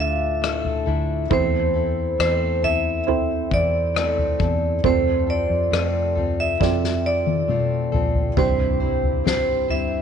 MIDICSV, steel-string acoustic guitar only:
0, 0, Header, 1, 2, 480
1, 0, Start_track
1, 0, Key_signature, -1, "major"
1, 0, Tempo, 882353
1, 714, Time_signature, 4, 2, 24, 8
1, 5450, End_track
2, 0, Start_track
2, 0, Title_t, "Steel-string acoustic guitar"
2, 0, Program_c, 0, 25
2, 0, Note_on_c, 0, 57, 34
2, 0, Note_on_c, 0, 62, 36
2, 0, Note_on_c, 0, 69, 49
2, 224, Note_off_c, 0, 57, 0
2, 227, Note_off_c, 0, 62, 0
2, 227, Note_on_c, 0, 57, 52
2, 234, Note_on_c, 0, 62, 53
2, 240, Note_on_c, 0, 64, 57
2, 242, Note_off_c, 0, 69, 0
2, 244, Note_on_c, 0, 69, 57
2, 461, Note_off_c, 0, 69, 0
2, 467, Note_on_c, 0, 69, 45
2, 468, Note_off_c, 0, 64, 0
2, 470, Note_off_c, 0, 57, 0
2, 474, Note_off_c, 0, 62, 0
2, 474, Note_on_c, 0, 64, 43
2, 479, Note_on_c, 0, 62, 43
2, 485, Note_on_c, 0, 57, 41
2, 704, Note_off_c, 0, 57, 0
2, 706, Note_on_c, 0, 52, 60
2, 710, Note_off_c, 0, 69, 0
2, 711, Note_off_c, 0, 62, 0
2, 711, Note_off_c, 0, 64, 0
2, 711, Note_on_c, 0, 57, 64
2, 713, Note_on_c, 0, 60, 66
2, 717, Note_on_c, 0, 64, 76
2, 720, Note_on_c, 0, 69, 80
2, 938, Note_off_c, 0, 69, 0
2, 945, Note_on_c, 0, 69, 49
2, 948, Note_off_c, 0, 64, 0
2, 950, Note_off_c, 0, 52, 0
2, 952, Note_off_c, 0, 57, 0
2, 954, Note_off_c, 0, 60, 0
2, 955, Note_on_c, 0, 64, 44
2, 962, Note_on_c, 0, 60, 38
2, 1187, Note_off_c, 0, 60, 0
2, 1187, Note_on_c, 0, 57, 54
2, 1189, Note_off_c, 0, 69, 0
2, 1193, Note_off_c, 0, 64, 0
2, 1194, Note_on_c, 0, 60, 53
2, 1199, Note_on_c, 0, 64, 59
2, 1204, Note_on_c, 0, 69, 60
2, 1420, Note_off_c, 0, 69, 0
2, 1427, Note_on_c, 0, 69, 44
2, 1430, Note_off_c, 0, 57, 0
2, 1430, Note_off_c, 0, 64, 0
2, 1434, Note_off_c, 0, 60, 0
2, 1436, Note_on_c, 0, 64, 39
2, 1445, Note_on_c, 0, 60, 34
2, 2146, Note_on_c, 0, 57, 54
2, 2152, Note_off_c, 0, 60, 0
2, 2153, Note_off_c, 0, 64, 0
2, 2154, Note_on_c, 0, 60, 53
2, 2160, Note_on_c, 0, 64, 60
2, 2162, Note_off_c, 0, 69, 0
2, 2164, Note_on_c, 0, 69, 61
2, 2381, Note_off_c, 0, 69, 0
2, 2388, Note_on_c, 0, 69, 46
2, 2390, Note_off_c, 0, 57, 0
2, 2391, Note_off_c, 0, 64, 0
2, 2394, Note_off_c, 0, 60, 0
2, 2397, Note_on_c, 0, 64, 44
2, 2405, Note_on_c, 0, 60, 40
2, 2631, Note_off_c, 0, 60, 0
2, 2631, Note_off_c, 0, 69, 0
2, 2631, Note_on_c, 0, 53, 55
2, 2635, Note_off_c, 0, 64, 0
2, 2635, Note_on_c, 0, 57, 58
2, 2638, Note_on_c, 0, 60, 65
2, 2641, Note_on_c, 0, 65, 65
2, 2643, Note_on_c, 0, 69, 75
2, 2860, Note_off_c, 0, 69, 0
2, 2866, Note_on_c, 0, 69, 46
2, 2871, Note_off_c, 0, 65, 0
2, 2872, Note_off_c, 0, 53, 0
2, 2874, Note_off_c, 0, 57, 0
2, 2876, Note_off_c, 0, 60, 0
2, 2877, Note_on_c, 0, 65, 43
2, 2884, Note_on_c, 0, 60, 39
2, 3106, Note_on_c, 0, 57, 51
2, 3107, Note_off_c, 0, 60, 0
2, 3110, Note_off_c, 0, 69, 0
2, 3113, Note_off_c, 0, 65, 0
2, 3113, Note_on_c, 0, 60, 52
2, 3119, Note_on_c, 0, 65, 59
2, 3124, Note_on_c, 0, 69, 60
2, 3342, Note_off_c, 0, 69, 0
2, 3348, Note_on_c, 0, 69, 41
2, 3350, Note_off_c, 0, 57, 0
2, 3351, Note_off_c, 0, 65, 0
2, 3353, Note_off_c, 0, 60, 0
2, 3357, Note_on_c, 0, 65, 43
2, 3365, Note_on_c, 0, 60, 36
2, 4069, Note_on_c, 0, 57, 46
2, 4071, Note_off_c, 0, 69, 0
2, 4074, Note_off_c, 0, 60, 0
2, 4076, Note_off_c, 0, 65, 0
2, 4076, Note_on_c, 0, 60, 53
2, 4082, Note_on_c, 0, 65, 59
2, 4087, Note_on_c, 0, 69, 56
2, 4303, Note_off_c, 0, 69, 0
2, 4309, Note_on_c, 0, 69, 47
2, 4311, Note_off_c, 0, 57, 0
2, 4312, Note_off_c, 0, 65, 0
2, 4315, Note_off_c, 0, 60, 0
2, 4318, Note_on_c, 0, 65, 39
2, 4327, Note_on_c, 0, 60, 39
2, 4550, Note_on_c, 0, 48, 57
2, 4551, Note_off_c, 0, 60, 0
2, 4551, Note_off_c, 0, 69, 0
2, 4553, Note_on_c, 0, 52, 65
2, 4555, Note_on_c, 0, 55, 63
2, 4556, Note_off_c, 0, 65, 0
2, 4557, Note_on_c, 0, 60, 70
2, 4559, Note_on_c, 0, 64, 67
2, 4562, Note_on_c, 0, 72, 69
2, 4781, Note_off_c, 0, 72, 0
2, 4788, Note_off_c, 0, 64, 0
2, 4788, Note_on_c, 0, 72, 43
2, 4792, Note_off_c, 0, 48, 0
2, 4793, Note_off_c, 0, 52, 0
2, 4793, Note_off_c, 0, 60, 0
2, 4794, Note_off_c, 0, 55, 0
2, 4794, Note_on_c, 0, 64, 45
2, 4800, Note_on_c, 0, 60, 35
2, 4805, Note_on_c, 0, 55, 41
2, 5021, Note_off_c, 0, 55, 0
2, 5028, Note_off_c, 0, 60, 0
2, 5028, Note_on_c, 0, 55, 57
2, 5031, Note_off_c, 0, 72, 0
2, 5034, Note_off_c, 0, 64, 0
2, 5035, Note_on_c, 0, 60, 60
2, 5040, Note_on_c, 0, 64, 58
2, 5045, Note_on_c, 0, 72, 55
2, 5261, Note_off_c, 0, 72, 0
2, 5268, Note_off_c, 0, 64, 0
2, 5268, Note_on_c, 0, 72, 46
2, 5271, Note_off_c, 0, 55, 0
2, 5274, Note_off_c, 0, 60, 0
2, 5275, Note_on_c, 0, 64, 44
2, 5281, Note_on_c, 0, 60, 39
2, 5286, Note_on_c, 0, 55, 37
2, 5450, Note_off_c, 0, 55, 0
2, 5450, Note_off_c, 0, 60, 0
2, 5450, Note_off_c, 0, 64, 0
2, 5450, Note_off_c, 0, 72, 0
2, 5450, End_track
0, 0, End_of_file